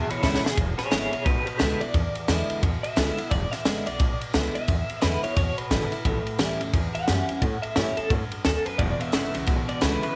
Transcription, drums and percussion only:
0.10 ride
0.23 kick, snare
0.35 snare
0.46 snare
0.58 kick, ride
0.79 snare, ride
0.92 snare, ride
1.13 ride
1.26 kick, ride
1.47 ride
1.60 snare, ride
1.81 ride
1.94 kick, ride
2.15 ride
2.28 snare, ride
2.50 ride
2.63 kick, ride
2.84 ride
2.97 snare, ride
3.18 ride
3.31 kick, ride
3.53 snare, ride
3.65 snare, ride
3.87 ride
4.00 kick, ride
4.21 ride
4.34 snare, ride
4.55 ride
4.68 kick, ride
4.90 ride
5.02 snare, ride
5.24 ride
5.37 kick, ride
5.58 ride
5.71 kick, snare, ride
5.92 ride
6.05 kick, ride
6.27 ride
6.39 snare, ride
6.61 ride
6.74 kick, ride
6.95 ride
7.08 snare, ride
7.29 ride
7.42 kick, ride
7.63 ride
7.76 snare, ride
7.97 ride
8.10 kick, ride
8.32 ride
8.45 snare, ride
8.66 ride
8.79 kick, ride
9.01 ride
9.13 snare, ride
9.35 ride
9.47 kick, ride
9.69 ride
9.82 snare, ride
10.03 ride

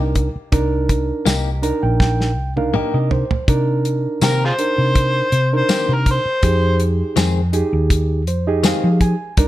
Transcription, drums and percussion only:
0.15 kick, closed hi-hat
0.52 kick, closed hi-hat
0.89 kick, closed hi-hat
1.26 snare, closed hi-hat, tambourine
1.63 closed hi-hat
2.00 kick, snare
2.21 snare
2.57 high tom
2.74 mid tom
3.11 floor tom
3.31 floor tom
3.48 kick, closed hi-hat
3.85 closed hi-hat
4.21 snare, closed hi-hat, tambourine
4.59 closed hi-hat
4.95 kick, closed hi-hat
5.32 closed hi-hat
5.69 snare, closed hi-hat, tambourine
6.06 kick, closed hi-hat
6.43 kick, closed hi-hat
6.80 closed hi-hat
7.17 snare, closed hi-hat, tambourine
7.53 closed hi-hat
7.90 kick, closed hi-hat
8.27 closed hi-hat
8.64 snare, closed hi-hat, tambourine
9.01 kick, closed hi-hat
9.37 kick, closed hi-hat

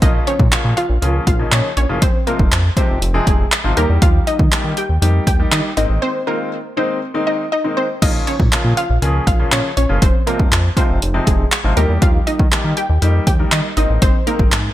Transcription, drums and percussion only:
0.02 kick, closed hi-hat
0.27 closed hi-hat
0.40 kick
0.52 clap, closed hi-hat
0.77 closed hi-hat
1.02 closed hi-hat
1.27 kick, closed hi-hat
1.52 clap, closed hi-hat
1.77 closed hi-hat
2.02 kick, closed hi-hat
2.27 closed hi-hat
2.39 kick
2.52 clap, closed hi-hat
2.77 kick, closed hi-hat
3.02 closed hi-hat
3.27 kick, closed hi-hat
3.52 clap, closed hi-hat
3.77 closed hi-hat
4.02 kick, closed hi-hat
4.27 closed hi-hat
4.39 kick
4.52 clap, closed hi-hat
4.77 closed hi-hat
5.02 closed hi-hat
5.27 kick, closed hi-hat
5.52 clap, closed hi-hat
5.77 closed hi-hat
8.02 kick, closed hi-hat, crash
8.27 closed hi-hat
8.40 kick
8.52 clap, closed hi-hat
8.77 closed hi-hat
9.02 closed hi-hat
9.27 kick, closed hi-hat
9.52 clap, closed hi-hat
9.77 closed hi-hat
10.02 kick, closed hi-hat
10.27 closed hi-hat
10.40 kick
10.52 clap, closed hi-hat
10.77 kick, closed hi-hat
11.02 closed hi-hat
11.27 kick, closed hi-hat
11.52 clap, closed hi-hat
11.77 closed hi-hat
12.02 kick, closed hi-hat
12.27 closed hi-hat
12.39 kick
12.52 clap, closed hi-hat
12.77 closed hi-hat
13.02 closed hi-hat
13.27 kick, closed hi-hat
13.52 clap, closed hi-hat
13.77 closed hi-hat
14.02 kick, closed hi-hat
14.27 closed hi-hat
14.39 kick
14.52 clap, closed hi-hat

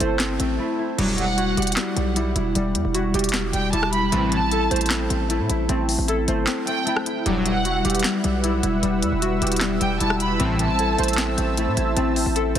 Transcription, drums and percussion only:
0.00 closed hi-hat
0.19 snare, clap, closed hi-hat
0.40 closed hi-hat
0.99 closed hi-hat, crash
1.18 closed hi-hat
1.38 closed hi-hat
1.57 closed hi-hat
1.62 closed hi-hat
1.67 closed hi-hat
1.72 closed hi-hat
1.76 snare, clap
1.97 closed hi-hat
2.16 closed hi-hat
2.36 closed hi-hat
2.55 closed hi-hat
2.75 closed hi-hat
2.95 closed hi-hat
3.14 closed hi-hat
3.19 closed hi-hat
3.24 closed hi-hat
3.29 closed hi-hat
3.33 snare, clap, closed hi-hat
3.53 closed hi-hat
3.73 closed hi-hat
3.83 cross-stick
3.93 closed hi-hat
4.12 closed hi-hat
4.32 closed hi-hat
4.51 closed hi-hat
4.71 closed hi-hat
4.76 closed hi-hat
4.81 closed hi-hat
4.86 closed hi-hat
4.90 snare, clap, closed hi-hat
5.10 closed hi-hat
5.30 closed hi-hat
5.50 closed hi-hat
5.69 closed hi-hat
5.89 open hi-hat
6.08 closed hi-hat
6.28 closed hi-hat
6.47 snare, clap, closed hi-hat
6.67 closed hi-hat
6.87 closed hi-hat
6.96 cross-stick
7.06 closed hi-hat
7.26 closed hi-hat
7.46 closed hi-hat
7.65 closed hi-hat
7.85 closed hi-hat
7.90 closed hi-hat
7.95 closed hi-hat
7.99 closed hi-hat
8.04 snare, clap, closed hi-hat
8.24 closed hi-hat
8.44 closed hi-hat
8.63 closed hi-hat
8.83 closed hi-hat
9.02 closed hi-hat
9.22 closed hi-hat
9.42 closed hi-hat
9.47 closed hi-hat
9.52 closed hi-hat
9.56 closed hi-hat
9.61 snare, clap
9.81 closed hi-hat
10.00 closed hi-hat
10.10 cross-stick
10.20 closed hi-hat
10.40 closed hi-hat
10.59 closed hi-hat
10.79 closed hi-hat
10.98 closed hi-hat
11.03 closed hi-hat
11.08 closed hi-hat
11.13 closed hi-hat
11.17 snare, clap, closed hi-hat
11.38 closed hi-hat
11.57 closed hi-hat
11.77 closed hi-hat
11.97 closed hi-hat
12.16 open hi-hat
12.36 closed hi-hat
12.55 closed hi-hat

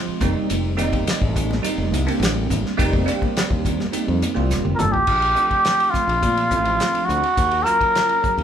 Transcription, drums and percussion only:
0.21 kick, hi-hat pedal, ride, high conga, low conga
0.50 hi-hat pedal, ride
0.78 hi-hat pedal, ride, low conga
0.93 kick, ride, high conga
1.07 snare, hi-hat pedal, ride
1.22 kick
1.36 kick, hi-hat pedal, ride, low conga
1.51 snare, high conga
1.64 hi-hat pedal, ride
1.94 hi-hat pedal, ride, high conga
2.08 ride
2.22 snare, hi-hat pedal, ride
2.50 kick, hi-hat pedal, ride, high conga, low conga
2.66 snare
2.79 kick, hi-hat pedal, ride
2.93 kick, high conga
3.08 hi-hat pedal, ride
3.22 kick, high conga
3.37 snare, hi-hat pedal, ride
3.50 kick
3.65 kick, hi-hat pedal, ride, low conga
3.80 snare, high conga
3.93 hi-hat pedal, ride
4.22 hi-hat pedal, ride, high conga
4.50 snare, hi-hat pedal
4.65 high tom
4.79 hi-hat pedal, mid tom, high conga, low conga
4.94 floor tom
5.07 kick, crash
5.22 ride
5.36 hi-hat pedal
5.51 kick, ride
5.65 snare, hi-hat pedal, ride
5.80 ride
5.94 kick, hi-hat pedal
6.09 ride
6.23 kick, hi-hat pedal, ride
6.37 ride
6.51 kick, hi-hat pedal
6.65 ride
6.80 snare, hi-hat pedal, ride
6.95 ride
7.09 hi-hat pedal
7.23 ride
7.37 kick, hi-hat pedal, ride
7.51 ride
7.66 hi-hat pedal
7.81 kick, ride
7.95 snare, hi-hat pedal, ride
8.09 ride
8.24 kick, hi-hat pedal
8.38 ride

